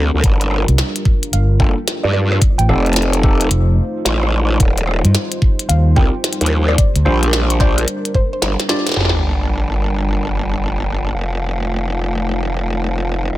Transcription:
Already playing: wobble bass D2, analog synth pad G3 C4 D4 A#4
0.14 wobble bass D2
0.24 wobble bass G1, analog synth pad F4, kick, closed hi-hat
0.41 closed hi-hat
0.51 cross-stick
0.68 fingered electric bass C2, closed hi-hat
0.78 snare, closed hi-hat
0.96 closed hi-hat
1.05 kick
1.23 closed hi-hat
1.33 fingered electric bass G1, synth pluck F5, closed hi-hat
1.60 wobble bass F1, tine electric piano A#3 D4 F4 A4, synth pluck G5, kick
1.88 snare, closed hi-hat
2.04 wobble bass G2, synth pluck D5
2.13 synth pluck D5
2.32 cross-stick
2.41 analog synth pad A3 D#4 C5, kick, closed hi-hat
2.58 fingered electric bass A1, synth pluck G5, closed hi-hat
2.69 wobble bass F1, tine electric piano C4 D#4 G4 A4, cross-stick
2.86 closed hi-hat
2.93 snare, closed hi-hat
2.96 closed hi-hat
3.02 closed hi-hat
3.13 closed hi-hat
3.23 tine electric piano C4 D#4 G4 A4, kick
3.41 closed hi-hat
3.51 fingered electric bass F1, closed hi-hat
4.05 wobble bass A1, snare, closed hi-hat
4.23 cross-stick
4.60 wobble bass D#1, analog synth pad G3, kick, closed hi-hat
4.78 closed hi-hat
4.87 cross-stick
5.05 fingered electric bass G2, closed hi-hat
5.15 snare, closed hi-hat
5.32 closed hi-hat
5.42 kick
5.59 closed hi-hat
5.69 fingered electric bass D#2, synth pluck F5, closed hi-hat
5.96 wobble bass C2, tine electric piano C4 F4 G4 A#4, synth pluck G5, kick
6.24 snare, closed hi-hat
6.33 closed hi-hat
6.41 wobble bass D#2, closed hi-hat
6.46 closed hi-hat
6.68 synth pluck D5, cross-stick
6.78 analog synth pad D4 A#4, synth pluck D5, kick, closed hi-hat
6.96 fingered electric bass D2, closed hi-hat
7.05 wobble bass A#1, tine electric piano D4 F4 G4 C5, cross-stick
7.23 closed hi-hat
7.33 snare, closed hi-hat
7.50 closed hi-hat
7.60 tine electric piano D4 F4 G4 C5, synth pluck D5, kick, snare
7.78 closed hi-hat
7.88 closed hi-hat
8.05 closed hi-hat
8.15 synth pluck C5, kick
8.33 synth pluck C5
8.42 wobble bass G1, snare, closed hi-hat
8.60 snare, closed hi-hat
8.69 tine electric piano D4 F4 G4 D5, snare
8.87 snare, closed hi-hat
8.89 snare
8.92 snare
8.94 wobble bass G1, snare
8.96 analog synth pad G3 D4 F4 A#4, snare, crash, sub drop
9.01 snare
9.05 snare
9.09 snare
11.14 wobble bass F1, analog synth pad A3 D#4 C5
13.31 wobble bass D#1, analog synth pad G3

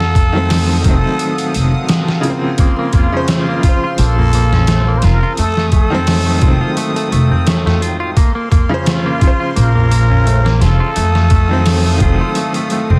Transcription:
Already playing: upright bass F2, muted trumpet A4, string section A4 F5 F#5 D#6
0.00 snare
0.15 kick, closed hi-hat
0.33 upright piano D#3 F#3 A3
0.37 upright piano C4
0.50 snare, open hi-hat
0.82 upright bass F1, upright piano D#3 F#3, kick, closed hi-hat
0.87 upright piano A3 C4, muted trumpet A4
1.19 closed hi-hat
1.38 closed hi-hat
1.54 upright bass F1, closed hi-hat
1.89 snare, closed hi-hat
2.08 snare
2.21 upright piano C#3 F3, closed hi-hat
2.27 upright piano A#3 C4
2.58 clean electric guitar A#3, string section C6, kick, closed hi-hat
2.79 clean electric guitar A#3
2.93 clean electric guitar A#3, muted trumpet F4, kick, closed hi-hat, tabla ge
3.12 upright piano C#3 F3, clean electric guitar C#4
3.17 upright piano C5
3.23 muted trumpet F#4
3.28 clean electric guitar A3, muted trumpet F4, snare, closed hi-hat, tabla na
3.48 clean electric guitar A#3
3.60 upright piano C#3 F3, kick, closed hi-hat
3.65 clean electric guitar F4
3.69 upright piano C5
3.84 clean electric guitar F4
3.98 upright bass A#1, clean electric guitar A#3, muted trumpet A4, closed hi-hat
4.17 clean electric guitar A#3, tabla ge
4.33 clean electric guitar A#3, closed hi-hat
4.52 clean electric guitar C#4, snare, tabla ge
4.67 clean electric guitar A3, snare, closed hi-hat, tabla na
4.88 clean electric guitar A#3
4.98 muted trumpet C5, closed hi-hat
5.03 upright bass F1, clean electric guitar F4, muted trumpet A#4, snare
5.23 clean electric guitar F4
5.37 upright bass F2, clean electric guitar A3, string section A4 D#6, muted trumpet A4, closed hi-hat
5.57 clean electric guitar A3, snare
5.72 clean electric guitar A3, muted trumpet A4, kick, closed hi-hat, tabla ge
5.90 upright piano D#3 F#3 A3, clean electric guitar C4
5.94 upright piano C4
6.07 clean electric guitar A3, snare, open hi-hat, tabla na
6.26 clean electric guitar A3
6.39 upright bass F1, upright piano D#3 F#3, clean electric guitar F4, kick, closed hi-hat
6.44 upright piano A3 C4
6.61 clean electric guitar F4
6.77 clean electric guitar A3, closed hi-hat
6.96 clean electric guitar A3, closed hi-hat
7.12 upright bass F1, clean electric guitar A3, closed hi-hat
7.31 clean electric guitar C4, tabla ge
7.47 clean electric guitar A3, snare, closed hi-hat, tabla na
7.66 clean electric guitar A3, snare, tabla ge
7.82 clean electric guitar F4, closed hi-hat
8.00 clean electric guitar F4
8.16 clean electric guitar A#3, string section F5 C6, kick, closed hi-hat
8.35 clean electric guitar A#3
8.52 clean electric guitar A#3, kick, closed hi-hat, tabla ge
8.69 upright piano C#3 F3, clean electric guitar C#4
8.74 upright piano C5
8.86 clean electric guitar A3, muted trumpet F4, snare, closed hi-hat, tabla na
9.06 clean electric guitar A#3
9.18 upright piano C#3 F3, clean electric guitar F4, kick, closed hi-hat
9.27 upright piano C5
9.40 clean electric guitar F4
9.56 upright bass A#1, clean electric guitar A#3, muted trumpet A#4, closed hi-hat
9.75 clean electric guitar A#3, tabla ge
9.91 clean electric guitar A#3, closed hi-hat
10.10 clean electric guitar C#4, tabla ge
10.26 clean electric guitar A3, closed hi-hat, tabla na
10.45 clean electric guitar A#3, snare
10.61 upright bass F1, clean electric guitar F4, muted trumpet A4, snare, closed hi-hat
10.80 clean electric guitar F4
10.95 upright bass F2, clean electric guitar A3, string section A4 F5 D#6, closed hi-hat
11.15 clean electric guitar A3, snare
11.30 clean electric guitar A3, kick, closed hi-hat, tabla ge
11.49 upright piano D#3 F#3 A3, clean electric guitar C4
11.53 upright piano C4
11.66 clean electric guitar A3, snare, open hi-hat, tabla na
11.86 clean electric guitar A3
11.98 upright bass F1, upright piano D#3 F#3, kick, closed hi-hat
12.02 upright piano A3, clean electric guitar F4, muted trumpet A4
12.06 upright piano C4
12.21 clean electric guitar F4
12.35 clean electric guitar A3, closed hi-hat
12.54 clean electric guitar A3, closed hi-hat
12.70 clean electric guitar A3, closed hi-hat
12.90 upright bass C2, clean electric guitar C4, tabla ge

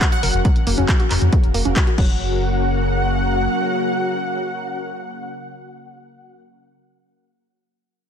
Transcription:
0.01 analog synth pad C#3 F#3 A#3 F#4, synth arpeggio sound F#4, kick, clap, closed hi-hat
0.12 synth arpeggio sound F#4, supersaw synth F#5, closed hi-hat
0.23 analog synth bass F#1, analog synth pad C#3 F#3 A#3 F#4, synth arpeggio sound A#4, open hi-hat
0.34 analog synth bass F#1, closed hi-hat
0.45 analog synth pad C#3 F#3 A#3 F#4, synth arpeggio sound F#3, kick, closed hi-hat
0.56 closed hi-hat
0.67 analog synth bass F#1, analog synth pad C#3 F#3 A#3 F#4, synth arpeggio sound A#3, open hi-hat
0.78 analog synth bass F#1, synth arpeggio sound C#4, closed hi-hat
0.89 analog synth pad C#3 F#3 A#3 F#4, synth arpeggio sound F#4, kick, clap, closed hi-hat
1.00 synth arpeggio sound F#4, closed hi-hat
1.11 analog synth bass F#1, analog synth pad C#3 F#3 A#3 F#4, synth arpeggio sound A#4, clap, open hi-hat
1.22 analog synth bass F#2, closed hi-hat
1.32 analog synth pad C#3 F#3 A#3 F#4, synth arpeggio sound F#3, kick, closed hi-hat
1.44 analog synth bass F#1, closed hi-hat
1.54 analog synth bass F#1, analog synth pad C#3 F#3 A#3 F#4, synth arpeggio sound A#3, open hi-hat
1.65 analog synth bass F#1, synth arpeggio sound C#4, closed hi-hat
1.76 analog synth pad C#3 F#3 A#3 F#4, synth arpeggio sound F#4, kick, clap, closed hi-hat
1.87 synth arpeggio sound F#4, closed hi-hat
1.98 analog synth bass F#1, analog synth pad C#3 F#3 A#3 F#4, synth arpeggio sound F#3, supersaw synth F#5, kick, crash

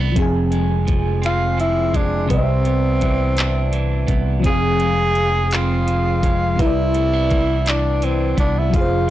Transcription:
Already playing: fingered electric bass C2, fm electric piano C3 E4 B4 D5, clean electric guitar C3 E3 D4
0.00 clean electric guitar B3
0.12 fm electric piano F3
0.16 fingered electric bass F1, clean electric guitar F2, fm electric piano C4 G#4, kick, closed hi-hat
0.22 fm electric piano G#5
0.52 clean electric guitar G#3, closed hi-hat
0.87 clean electric guitar F3, kick, closed hi-hat
1.22 clean electric guitar C4, tenor saxophone F4, closed hi-hat
1.26 finger snap
1.58 clean electric guitar F3, tenor saxophone E4, closed hi-hat
1.94 clean electric guitar G#3, tenor saxophone D4, kick, closed hi-hat
2.27 fm electric piano C3 B4, clean electric guitar C3, tenor saxophone C4, kick, closed hi-hat
2.31 fingered electric bass C2, fm electric piano D5
2.37 fm electric piano D#5
2.44 fm electric piano E5
2.65 clean electric guitar B3, closed hi-hat
3.01 clean electric guitar E3, kick, closed hi-hat
3.37 clean electric guitar D4, clap, closed hi-hat
3.73 clean electric guitar E3, closed hi-hat
4.07 fingered electric bass C2, clean electric guitar B3, kick, closed hi-hat
4.40 clean electric guitar F2, fm electric piano F3 C4
4.44 fingered electric bass F1, tenor saxophone G#4, fm electric piano G#4, kick, closed hi-hat
4.50 fm electric piano F5
4.80 clean electric guitar G#3, closed hi-hat
5.15 clean electric guitar F3, closed hi-hat
5.51 clean electric guitar C4, tenor saxophone F4, clap, closed hi-hat
5.87 clean electric guitar F3, closed hi-hat
6.23 clean electric guitar G#3, kick, closed hi-hat
6.56 fm electric piano C3 B4, clean electric guitar C3, kick, closed hi-hat
6.60 fingered electric bass C2, tenor saxophone E4, fm electric piano E4
6.66 fm electric piano D5
6.94 clean electric guitar A3, closed hi-hat
7.13 clean electric guitar B3
7.30 clean electric guitar E3, kick, closed hi-hat
7.66 clean electric guitar D4, tenor saxophone D4, clap, closed hi-hat
8.02 clean electric guitar E3, tenor saxophone C4, closed hi-hat
8.37 fingered electric bass C2, clean electric guitar B3, tenor saxophone D4, kick, closed hi-hat
8.58 tenor saxophone E4
8.70 clean electric guitar F2, fm electric piano F3 F4, kick, closed hi-hat
8.75 fingered electric bass F1, tenor saxophone F4, fm electric piano G#4
8.81 fm electric piano C5

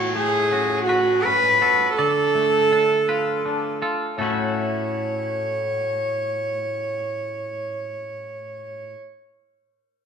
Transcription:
Already playing: clean electric guitar A2 C#5, cello F#4
0.15 clean electric guitar A3, cello G#4
0.51 clean electric guitar C#4 F#4
0.86 cello F#4, clean electric guitar F#4 B4
1.24 clean electric guitar C#4, cello B4
1.61 clean electric guitar F#4 A4
1.96 clean electric guitar D3 D5, cello A4
2.35 clean electric guitar A3
2.72 clean electric guitar D4 A4
3.09 clean electric guitar F4 B4
3.45 clean electric guitar D4
3.82 clean electric guitar F4 A4
4.18 clean electric guitar A2 A3 C#4 E4 F#4 A4, cello C#5

